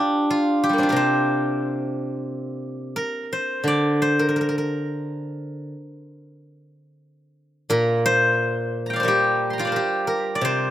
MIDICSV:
0, 0, Header, 1, 2, 480
1, 0, Start_track
1, 0, Tempo, 668896
1, 669, Time_signature, 2, 2, 24, 8
1, 2112, Tempo, 692841
1, 4032, Tempo, 668896
1, 5952, Tempo, 687285
1, 7569, End_track
2, 0, Start_track
2, 0, Title_t, "Guzheng"
2, 0, Program_c, 0, 107
2, 0, Note_on_c, 0, 62, 54
2, 0, Note_on_c, 0, 65, 64
2, 0, Note_on_c, 0, 67, 58
2, 0, Note_on_c, 0, 72, 72
2, 215, Note_off_c, 0, 65, 0
2, 218, Note_on_c, 0, 65, 58
2, 453, Note_off_c, 0, 67, 0
2, 456, Note_on_c, 0, 67, 58
2, 497, Note_on_c, 0, 55, 26
2, 526, Note_on_c, 0, 58, 29
2, 561, Note_on_c, 0, 60, 33
2, 565, Note_off_c, 0, 62, 0
2, 568, Note_on_c, 0, 62, 37
2, 579, Note_off_c, 0, 72, 0
2, 593, Note_off_c, 0, 65, 0
2, 596, Note_on_c, 0, 65, 39
2, 635, Note_off_c, 0, 67, 0
2, 638, Note_on_c, 0, 67, 43
2, 639, Note_off_c, 0, 55, 0
2, 646, Note_on_c, 0, 70, 45
2, 663, Note_on_c, 0, 48, 44
2, 691, Note_on_c, 0, 72, 60
2, 2110, Note_off_c, 0, 48, 0
2, 2113, Note_off_c, 0, 72, 0
2, 2121, Note_off_c, 0, 70, 0
2, 2124, Note_on_c, 0, 70, 57
2, 2319, Note_off_c, 0, 67, 0
2, 2377, Note_on_c, 0, 72, 60
2, 2398, Note_off_c, 0, 65, 0
2, 2560, Note_off_c, 0, 62, 0
2, 2592, Note_on_c, 0, 50, 42
2, 2619, Note_on_c, 0, 74, 66
2, 2694, Note_off_c, 0, 60, 0
2, 2813, Note_off_c, 0, 58, 0
2, 2854, Note_off_c, 0, 72, 0
2, 2857, Note_on_c, 0, 72, 63
2, 2975, Note_off_c, 0, 70, 0
2, 2978, Note_on_c, 0, 70, 50
2, 3039, Note_off_c, 0, 70, 0
2, 3042, Note_on_c, 0, 70, 38
2, 3091, Note_off_c, 0, 70, 0
2, 3093, Note_on_c, 0, 70, 40
2, 3124, Note_off_c, 0, 70, 0
2, 3127, Note_on_c, 0, 70, 35
2, 3179, Note_off_c, 0, 70, 0
2, 3182, Note_on_c, 0, 70, 38
2, 3242, Note_off_c, 0, 70, 0
2, 3245, Note_on_c, 0, 70, 35
2, 3898, Note_off_c, 0, 74, 0
2, 4034, Note_off_c, 0, 50, 0
2, 4236, Note_off_c, 0, 72, 0
2, 4742, Note_off_c, 0, 70, 0
2, 5454, Note_on_c, 0, 46, 50
2, 5459, Note_on_c, 0, 70, 81
2, 5712, Note_on_c, 0, 72, 86
2, 6280, Note_on_c, 0, 82, 29
2, 6308, Note_on_c, 0, 79, 34
2, 6332, Note_on_c, 0, 77, 39
2, 6349, Note_on_c, 0, 74, 42
2, 6374, Note_off_c, 0, 72, 0
2, 6376, Note_on_c, 0, 72, 46
2, 6396, Note_off_c, 0, 70, 0
2, 6399, Note_on_c, 0, 70, 49
2, 6410, Note_on_c, 0, 55, 48
2, 6433, Note_on_c, 0, 67, 65
2, 6729, Note_on_c, 0, 84, 26
2, 6747, Note_off_c, 0, 82, 0
2, 6750, Note_on_c, 0, 82, 28
2, 6780, Note_off_c, 0, 79, 0
2, 6783, Note_on_c, 0, 79, 31
2, 6792, Note_on_c, 0, 65, 56
2, 6797, Note_off_c, 0, 77, 0
2, 6800, Note_on_c, 0, 77, 31
2, 6828, Note_off_c, 0, 74, 0
2, 6830, Note_on_c, 0, 74, 34
2, 6843, Note_off_c, 0, 72, 0
2, 6846, Note_on_c, 0, 72, 34
2, 6877, Note_off_c, 0, 70, 0
2, 6879, Note_on_c, 0, 70, 35
2, 6900, Note_off_c, 0, 46, 0
2, 6906, Note_off_c, 0, 67, 0
2, 6909, Note_on_c, 0, 67, 52
2, 7124, Note_off_c, 0, 70, 0
2, 7127, Note_on_c, 0, 70, 56
2, 7320, Note_off_c, 0, 74, 0
2, 7323, Note_on_c, 0, 74, 55
2, 7365, Note_on_c, 0, 48, 50
2, 7386, Note_off_c, 0, 72, 0
2, 7388, Note_on_c, 0, 72, 77
2, 7569, Note_off_c, 0, 48, 0
2, 7569, Note_off_c, 0, 55, 0
2, 7569, Note_off_c, 0, 65, 0
2, 7569, Note_off_c, 0, 67, 0
2, 7569, Note_off_c, 0, 70, 0
2, 7569, Note_off_c, 0, 72, 0
2, 7569, Note_off_c, 0, 74, 0
2, 7569, Note_off_c, 0, 77, 0
2, 7569, Note_off_c, 0, 79, 0
2, 7569, Note_off_c, 0, 82, 0
2, 7569, Note_off_c, 0, 84, 0
2, 7569, End_track
0, 0, End_of_file